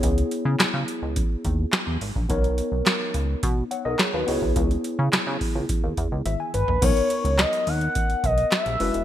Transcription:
<<
  \new Staff \with { instrumentName = "Analog synth lead" } { \time 4/4 \key b \major \tempo 4 = 106 r1 | r1 | r2. r8 b'8 | cis''4 dis''8 fis''4 dis''8 e''4 | }
  \new Staff \with { instrumentName = "Tine electric piano" } { \time 4/4 \key b \major << { r1 | r2 r8 <cis'' fis''>16 <ais' dis''>16 <gis' cis''>16 <fis' b'>8 r16 | r2. e''16 gis''8. | r1 | } \\ { <b e' gis' cis''>2.~ <b e' gis' cis''>8 r8 | <b dis' ais' cis''>2.~ <b dis' ais' cis''>8 <b e' gis' cis''>8~ | <b e' gis' cis''>2.~ <b e' gis' cis''>8 r8 | <b dis' ais' cis''>2.~ <b dis' ais' cis''>8 <gis e' fis' b'>8 | } >> }
  \new Staff \with { instrumentName = "Analog synth bass" } { \clef bass \time 4/4 \key b \major cis,8 r16 cis16 r16 cis16 r16 cis,8 r16 dis,8 r16 e,16 gis,,16 ais,,16 | b,,8. b,,16 r8 cis,8 b,8 r16 b,,16 r16 dis,16 cis,16 b,,16 | cis,8 r16 cis16 r16 cis16 r16 cis,16 r16 dis,16 e,16 cis,16 gis,,16 r16 gis,,16 ais,,16 | b,,16 r8 cis,8 r16 dis,8 r8 b,,8 r16 ais,,16 fis,,16 e,,16 | }
  \new DrumStaff \with { instrumentName = "Drums" } \drummode { \time 4/4 <hh bd>16 hh16 hh8 <hc hh sn>8 hh8 <hh bd>8 <hh bd>8 <hc hh sn>8 hho16 bd16 | <hh bd>16 hh16 hh8 <hc hh sn>8 hh8 <hh bd>8 hh8 <hc hh sn>8 hho16 bd16 | <hh bd>16 hh16 hh8 <hc hh sn>8 <hho bd>8 <hh bd>8 <hh bd>8 <hh tommh>8 <hh toml>16 tomfh16 | <cymc hh bd>16 hh16 hh16 hh16 <hc hh sn>16 hh16 hho16 hh16 <hh bd>16 hh16 <hh bd>16 hh16 <hc hh sn>16 hh16 hho16 hh16 | }
>>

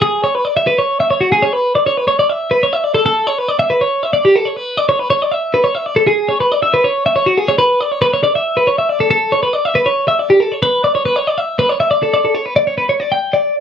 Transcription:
\new Staff \with { instrumentName = "Clean electric guitar" } { \time 7/8 \key a \mixolydian \tempo 4 = 139 gis'8 cis''16 b'16 d''16 e''16 b'16 cis''8 e''16 cis''16 fis'16 gis'16 cis''16 | b'8 d''16 cis''16 b'16 cis''16 d''16 e''8 b'16 cis''16 e''16 d''16 a'16 | a'8 cis''16 b'16 d''16 e''16 b'16 cis''8 e''16 d''16 g'16 a'16 cis''16 | b'8 d''16 cis''16 b'16 cis''16 d''16 e''8 b'16 cis''16 e''16 d''16 a'16 |
gis'8 cis''16 b'16 d''16 e''16 b'16 cis''8 e''16 cis''16 fis'16 gis'16 cis''16 | b'8 d''16 cis''16 b'16 cis''16 d''16 e''8 b'16 cis''16 e''16 d''16 a'16 | a'8 cis''16 b'16 d''16 e''16 b'16 cis''8 e''16 d''16 g'16 a'16 cis''16 | b'8 d''16 cis''16 b'16 cis''16 d''16 e''8 b'16 cis''16 e''16 d''16 a'16 |
d''16 a'16 cis''16 b'16 d''16 cis''16 b'16 cis''16 d''16 g''8 d''8 r16 | }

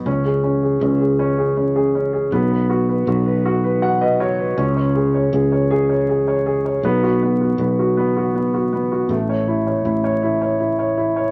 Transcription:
<<
  \new Staff \with { instrumentName = "Upright piano" } { \time 6/8 \key cis \minor \tempo 4. = 53 << { r2. | r2 fis''16 dis''16 cis''8 | r2. | r2. |
r2. | } \\ { cis'16 gis'16 cis'16 gis'16 cis'16 gis'16 cis'16 gis'16 cis'16 gis'16 cis'16 gis'16 | b16 b'16 fis'16 b'16 fis'16 b'16 fis'16 b'16 fis'16 b'16 fis'16 b'16 | cis'16 cis''16 gis'16 cis''16 gis'16 cis''16 gis'16 cis''16 gis'16 cis''16 gis'16 cis''16 | b16 fis'16 b16 fis'16 b16 fis'16 b16 fis'16 b16 fis'16 b16 fis'16 |
a16 cis''16 e'16 cis''16 e'16 cis''16 e'16 cis''16 e'16 cis''16 e'16 cis''16 | } >> }
  \new Staff \with { instrumentName = "Fretless electric bass" } { \clef bass \time 6/8 \key cis \minor cis,4 cis,2 | b,,4 b,,2 | cis,4 cis,2 | b,,4 b,,2 |
a,,4 a,,2 | }
>>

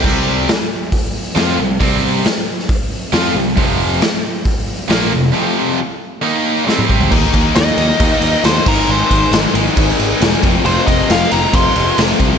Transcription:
<<
  \new Staff \with { instrumentName = "Lead electric guitar" } { \time 4/4 \key c \minor \tempo 4 = 136 r1 | r1 | r1 | r1 |
r4 ees''2 c''8 bes'8 | c''4 r2. | c''8 ees''8 f''8 bes''8 c'''4 r4 | }
  \new Staff \with { instrumentName = "Distorted electric guitar" } { \clef bass \time 4/4 \key c \minor <c g c'>4 r2 <f c' f'>8 <c g>8 | <c g c'>4 r2 <f c' f'>8 <c g>8 | <f, c f>4 r2 <bes, f bes>8 <f, c>8 | <f, c f>4 r4 <ees bes ees'>4 <c g c'>4 |
r1 | r1 | r1 | }
  \new Staff \with { instrumentName = "Distorted electric guitar" } { \clef bass \time 4/4 \key c \minor <c g c'>4 r2 <f c' f'>8 <c g>8 | <c g c'>4 r2 <f c' f'>8 <c g>8 | <f, c f>4 r2 <bes, f bes>8 <f, c>8 | <f, c f>4 r4 <ees bes ees'>4 <c g c'>4 |
<ees bes ees'>2 <ees bes ees'>4. <aes, ees aes>8~ | <aes, ees aes>4. <aes, ees aes>2 <f, c f>8~ | <f, c f>4. <f, c f>2 <f, c f>8 | }
  \new Staff \with { instrumentName = "Distorted electric guitar" } { \clef bass \time 4/4 \key c \minor <c g c'>4 r2 <f c' f'>8 <c g>8 | <c g c'>4 r2 <f c' f'>8 <c g>8 | <f, c f>4 r2 <bes, f bes>8 <f, c>8 | <f, c f>4 r4 <ees bes ees'>4 <c g c'>4 |
<ees bes ees'>8 <ees bes ees'>8 <ees bes ees'>8 <ees bes ees'>8 <ees bes ees'>8 <ees bes ees'>8 <ees bes ees'>8 <aes, ees aes>8 | <aes, ees aes>8 <aes, ees aes>8 <aes, ees aes>8 <aes, ees aes>8 <aes, ees aes>8 <aes, ees aes>8 <aes, ees aes>8 <f, c f>8 | <f, c f>8 <f, c f>8 <f, c f>8 <f, c f>8 <f, c f>8 <f, c f>8 <f, c f>8 <f, c f>8 | }
  \new Staff \with { instrumentName = "Picked electric bass" } { \clef bass \time 4/4 \key c \minor c,4 r2 f,8 c,8 | c,4 r2 f,8 c,8 | f,,4 r2 bes,,8 f,,8 | r1 |
ees,8 ees,8 ees,8 ees,8 ees,8 ees,8 ees,8 aes,,8 | aes,,8 aes,,8 aes,,8 aes,,8 aes,,8 aes,,8 e,,8 f,,8 | f,,8 f,,8 f,,8 f,,8 f,,8 f,,8 f,,8 c,8 | }
  \new DrumStaff \with { instrumentName = "Drums" } \drummode { \time 4/4 <cymc bd>4 <hho sn>4 <hho bd>4 <hho sn>4 | <hho bd>4 <hho sn>8. sn16 <hho bd>4 <hho sn>4 | <hho bd>4 <hho sn>4 <hho bd>4 <hho sn>4 | r4 r4 r4 sn16 toml16 bd16 tomfh16 |
<cymc bd>8 <bd cymr>8 <cymr sn>8 cymr8 <bd cymr>8 cymr8 <cymr sn>8 <cymc bd>8 | r8 <bd cymr>8 <cymr sn>8 cymr8 <bd cymr>8 cymr8 <cymr sn>8 <bd cymr>8 | cymr8 <bd cymr>8 <cymr sn>8 cymr8 <bd cymr>8 cymr8 <cymr sn>8 <bd cymr>8 | }
>>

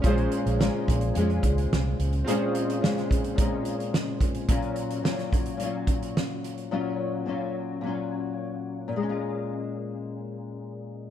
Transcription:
<<
  \new Staff \with { instrumentName = "Synth keys" } { \time 4/4 \key bes \minor \tempo 4 = 108 <des' f' aes' c''>1 | <c' des' f' aes' c''>1 | r1 | r1 |
r1 | }
  \new Staff \with { instrumentName = "Nylon-string guitar" } { \time 4/4 \key bes \minor <bes, aes des' f'>4 <bes, aes des' f'>4 <bes, aes des' f'>2 | <bes, aes des' f'>4 <bes, aes des' f'>4 <bes, aes des' f'>2 | <bes, ges des' f'>4 <bes, ges des' f'>4 <bes, ges des' f'>2 | <bes, ges des' f'>4 <bes, ges des' f'>4 <bes, ges des' f'>2 |
<bes, aes des' f'>1 | }
  \new Staff \with { instrumentName = "Fingered electric bass" } { \clef bass \time 4/4 \key bes \minor bes,,8 r16 bes,,8 r16 bes,,8 f,8 des,8 c,8 des,8 | r1 | r1 | r1 |
r1 | }
  \new DrumStaff \with { instrumentName = "Drums" } \drummode { \time 4/4 <hh bd>16 hh16 hh16 hh16 sn8 <hh bd>16 hh16 hh16 hh16 <hh bd>16 hh16 sn8 hh16 hh16 | hh8 hh16 hh16 sn16 <hh sn>16 <hh bd>16 hh16 <hh bd>8 hh16 hh16 sn8 <hh bd>16 hh16 | <hh bd>16 hh16 hh16 hh16 sn16 <hh sn>16 <hh bd>16 hh16 hh8 <hh bd>16 hh16 sn8 hh16 hh16 | r4 r4 r4 r4 |
r4 r4 r4 r4 | }
>>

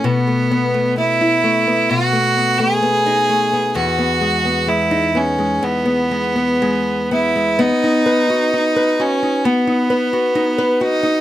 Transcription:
<<
  \new Staff \with { instrumentName = "Fiddle" } { \time 4/4 \key b \mixolydian \tempo 4 = 65 b4 e'4 fis'8. gis'4~ gis'16 | fis'4 e'8 cis'8 b4. e'8 | dis'4. cis'8 b4. dis'8 | }
  \new Staff \with { instrumentName = "Nylon-string guitar" } { \time 4/4 \key b \mixolydian b,16 a16 b16 a16 b16 e'16 a16 b16 b,16 a16 b16 a16 b16 dis'16 a16 b16 | e,16 b16 gis16 b16 gis16 dis'16 b16 gis16 e,16 b16 gis16 b16 gis8 b16 gis16 | b16 dis'16 b'16 fis'16 dis'16 b'16 fis'16 dis'16 b16 dis'16 b'16 fis'16 dis'16 b'16 fis'16 dis'16 | }
>>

